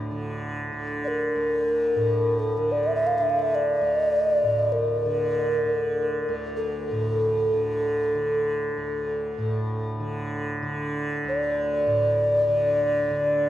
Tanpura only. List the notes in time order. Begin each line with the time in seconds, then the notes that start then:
Already playing: D2 A2 D3
0.11 D3
0.72 D3
1.35 D2
1.96 A2
2.58 D3
3.19 D3
3.81 D2
4.43 A2
5.05 D3
5.65 D3
6.28 D2
6.91 A2
7.53 D3
8.15 D3
8.77 D2
9.38 A2
10.00 D3
10.62 D3
11.24 D2
11.86 A2
12.48 D3
13.11 D3